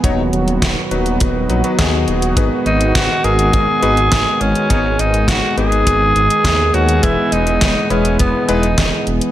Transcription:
Already playing: analog synth pad B3
0.04 detuned saw bass D#1, analog synth pad D#3 F#3 F#4, electric grand piano F#3 B3 D#4 F#4 C#5, kick, closed hi-hat
0.33 detuned saw bass D#1, closed hi-hat
0.48 closed hi-hat
0.62 detuned saw bass D#1, kick, snare, closed hi-hat
0.91 detuned saw bass D#1, electric grand piano F#3 B3 D#4 F#4 B4, closed hi-hat
1.06 closed hi-hat
1.20 detuned saw bass D#1, kick, closed hi-hat
1.49 detuned saw bass A#1, electric grand piano F#3 B3 D#4 F#4 B4, closed hi-hat
1.64 electric grand piano F#3 B3 D#4 F#4 B4, closed hi-hat
1.79 detuned saw bass D#2, electric grand piano F#3 B3 D#4 F#4 G#4, kick, snare, closed hi-hat
2.08 detuned saw bass D#1, closed hi-hat
2.22 closed hi-hat
2.37 detuned saw bass G#1, analog synth pad G#3, electric grand piano B3 D#4 F#4 G#4 B4, kick, closed hi-hat
2.66 detuned saw bass G#1, tenor saxophone D#4, closed hi-hat
2.81 closed hi-hat
2.95 detuned saw bass G#1, tenor saxophone F#4, kick, snare, closed hi-hat
3.24 detuned saw bass G#1, electric grand piano B3 D#4 F#4 G#4 A#4, tenor saxophone G#4, closed hi-hat
3.39 closed hi-hat
3.53 detuned saw bass G#1, kick, closed hi-hat
3.83 detuned saw bass G#1, electric grand piano B3 D#4 F#4 G#4 B4, closed hi-hat
3.97 closed hi-hat
4.12 detuned saw bass G#1, kick, snare, closed hi-hat
4.41 detuned saw bass G#1, tenor saxophone C#4, closed hi-hat
4.55 closed hi-hat
4.70 detuned saw bass G#1, electric grand piano B3 D#4 F#4 G#4 C#5, analog synth pad G#4, kick, closed hi-hat
4.99 detuned saw bass G#1, tenor saxophone D#4, closed hi-hat
5.14 closed hi-hat
5.28 detuned saw bass G#1, tenor saxophone F#4, kick, snare, closed hi-hat
5.57 detuned saw bass G#1, electric grand piano B3 D#4 F#4 G#4 B4, tenor saxophone G#4, closed hi-hat
5.72 closed hi-hat
5.87 detuned saw bass G#1, kick, closed hi-hat
6.16 detuned saw bass G#1, closed hi-hat
6.30 closed hi-hat
6.44 detuned saw bass D#2, kick, snare, closed hi-hat
6.74 detuned saw bass D#2, electric grand piano B3 D#4 F#4 G#4 C#5, tenor saxophone F#4, closed hi-hat
6.89 closed hi-hat
7.03 detuned saw bass E1, electric grand piano E3 G#3 B3 G#4 B4, analog synth pad E3 G#3 B3, tenor saxophone E4, kick, closed hi-hat
7.32 detuned saw bass E1, tenor saxophone D#4, closed hi-hat
7.47 closed hi-hat
7.61 detuned saw bass E1, kick, snare, closed hi-hat
7.90 detuned saw bass E1, electric grand piano G#3 B3 E4 G#4 B4, tenor saxophone C#4, closed hi-hat
8.05 closed hi-hat
8.19 detuned saw bass E1, tenor saxophone B3, kick, closed hi-hat
8.49 detuned saw bass E1, electric grand piano G#3 B3 E4 G#4 B4, tenor saxophone D#4, closed hi-hat
8.63 closed hi-hat
8.78 detuned saw bass E1, kick, snare, closed hi-hat
9.07 detuned saw bass E1, closed hi-hat
9.21 closed hi-hat

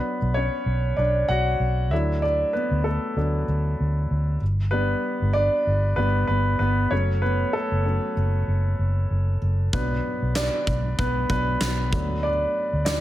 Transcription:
Already playing: grand piano F#3 B3 D4 B4
0.22 fingered electric bass B1
0.34 grand piano C#4 C#5
0.66 fingered electric bass B1
0.97 fingered electric bass B1, grand piano D4 D5
1.28 fingered electric bass B1, grand piano F#4 F#5
1.60 fingered electric bass B1
1.91 fingered electric bass D2, grand piano F#3 A3 D4 E4 E5
2.22 grand piano D4 D5
2.53 grand piano B3 B4
2.71 fingered electric bass D2
2.84 grand piano A3 A4
3.16 fingered electric bass D2, grand piano F#3 A3 D4
3.48 fingered electric bass D2
3.80 fingered electric bass D2
4.11 fingered electric bass D2
4.41 fingered electric bass G1
4.71 grand piano G3 B3 D4 B4
5.22 fingered electric bass G1
5.33 grand piano D4 D5
5.67 fingered electric bass G1
5.96 fingered electric bass G1, grand piano G3 B3 D4 B4
6.27 fingered electric bass G1, grand piano B3 B4
6.59 fingered electric bass G1, grand piano B3 B4
6.91 fingered electric bass F#1, grand piano F#3 A3 C#4 C#5
7.22 grand piano B3 B4
7.53 grand piano A3 A4
7.71 fingered electric bass F#1
7.85 grand piano F#3 A3 C#4
8.17 fingered electric bass F#1
8.48 fingered electric bass F#1
8.79 fingered electric bass F#1
9.10 fingered electric bass F#1
9.42 fingered electric bass F#1
9.73 fingered electric bass B1, grand piano F#3 B3 D4 B4, kick
10.22 fingered electric bass B1
10.36 grand piano D4 D5, snare, clap
10.67 fingered electric bass B1, kick
10.99 fingered electric bass B1, grand piano B3 B4, kick
11.30 fingered electric bass B1, grand piano F#3 B3 D4 B4, kick
11.60 fingered electric bass B1, snare, clap
11.92 fingered electric bass D2, grand piano F#3 A3 D4, kick
12.23 grand piano D4 D5
12.73 fingered electric bass D2
12.85 grand piano D4 D5, snare, clap

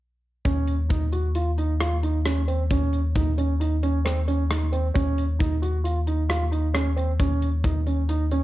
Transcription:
0.45 sub bass D#2, grand piano C#4, kick, closed hi-hat
0.68 closed hi-hat
0.89 grand piano D#4, kick, closed hi-hat
1.12 grand piano F#4, closed hi-hat
1.35 grand piano F4, closed hi-hat
1.58 grand piano D#4, closed hi-hat
1.80 grand piano F4, cross-stick, closed hi-hat
2.03 grand piano D#4, closed hi-hat
2.25 grand piano C#4, cross-stick, closed hi-hat
2.47 grand piano C4, closed hi-hat
2.70 grand piano C#4, kick, closed hi-hat
2.93 closed hi-hat
3.15 grand piano D#4, kick, closed hi-hat
3.38 grand piano C#4, closed hi-hat
3.60 grand piano D#4, closed hi-hat
3.83 grand piano C#4, closed hi-hat
4.05 grand piano C4, cross-stick, closed hi-hat
4.28 grand piano C#4, closed hi-hat
4.50 grand piano D#4, cross-stick, closed hi-hat
4.72 grand piano C4, closed hi-hat
4.94 sub bass D#2, grand piano C#4, kick, closed hi-hat
5.18 closed hi-hat
5.39 grand piano D#4, kick, closed hi-hat
5.62 grand piano F#4, closed hi-hat
5.84 grand piano F4, closed hi-hat
6.07 grand piano D#4, closed hi-hat
6.29 grand piano F4, cross-stick, closed hi-hat
6.52 grand piano D#4, closed hi-hat
6.74 grand piano C#4, cross-stick, closed hi-hat
6.96 grand piano C4, closed hi-hat
7.20 grand piano C#4, kick, closed hi-hat
7.42 closed hi-hat
7.64 grand piano D#4, kick, closed hi-hat
7.87 grand piano C#4, closed hi-hat
8.09 grand piano D#4, closed hi-hat
8.31 grand piano C#4, closed hi-hat

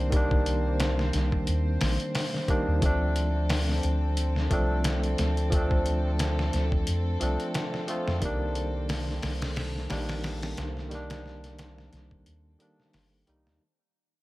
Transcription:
Already playing: sub bass C2, tine electric piano D#3 G3 A#3 D4, violin section C4 C5
0.10 tine electric piano D#3 G3, kick, closed hi-hat
0.15 tine electric piano A#3 D4
0.31 kick
0.46 closed hi-hat
0.80 snare, closed hi-hat
0.99 snare
1.13 sub bass C2, snare, closed hi-hat
1.32 kick
1.47 sub bass D#2, closed hi-hat
1.81 sub bass A#1, snare, open hi-hat
2.00 closed hi-hat
2.15 snare, open hi-hat
2.34 snare
2.48 tine electric piano D#3 G3 A#3 D4, kick, closed hi-hat
2.68 sub bass D#2
2.79 sub bass D2, tine electric piano F3 A3, violin section C4 A4, kick, closed hi-hat
2.84 tine electric piano C4 D4
3.16 closed hi-hat
3.50 snare, open hi-hat
3.69 snare
3.83 sub bass D2, closed hi-hat
4.17 closed hi-hat
4.36 snare
4.50 sub bass C2, tine electric piano F3 A3 C4 D4, kick, closed hi-hat
4.84 snare, closed hi-hat
5.04 closed hi-hat
5.18 sub bass D2, snare, closed hi-hat
5.37 closed hi-hat
5.50 tine electric piano F3 A3, kick, closed hi-hat
5.54 tine electric piano C4 D4
5.71 kick
5.86 closed hi-hat
6.19 snare, closed hi-hat
6.39 snare
6.53 sub bass D2, snare, closed hi-hat
6.72 kick
6.87 sub bass F2, closed hi-hat
7.20 sub bass C2, tine electric piano F3 A3 C4 D4, closed hi-hat
7.40 closed hi-hat
7.54 snare, closed hi-hat
7.74 snare
7.87 tine electric piano F3 A3 C4 F4, closed hi-hat
8.08 sub bass F2, snare
8.19 sub bass C2, tine electric piano D#3 G3, kick, closed hi-hat
8.24 tine electric piano A#3 D4
8.55 closed hi-hat
8.89 snare, open hi-hat
9.09 snare
9.22 sub bass C2, snare, open hi-hat
9.42 snare, open hi-hat
9.56 snare, open hi-hat
9.76 snare
9.89 sub bass A#1, tine electric piano D#3 G3 A#3 D4, snare, open hi-hat
10.09 snare, open hi-hat
10.24 snare, open hi-hat
10.42 snare, open hi-hat
10.57 sub bass C2, snare, closed hi-hat
10.77 snare
10.89 tine electric piano D#3 G3, snare, closed hi-hat
10.93 tine electric piano A#3 D4
11.10 snare, closed hi-hat
11.26 snare
11.44 snare, closed hi-hat
11.59 snare, closed hi-hat
11.78 snare
11.93 sub bass C2, snare, closed hi-hat
12.11 kick
12.26 sub bass D#2, closed hi-hat
12.59 tine electric piano D#3 G3 A#3 D4, closed hi-hat
12.80 snare
12.93 sub bass G1, snare, open hi-hat
13.26 sub bass C2, tine electric piano D#3 G3 A#3 D#4, closed hi-hat
13.47 sub bass D#2, snare

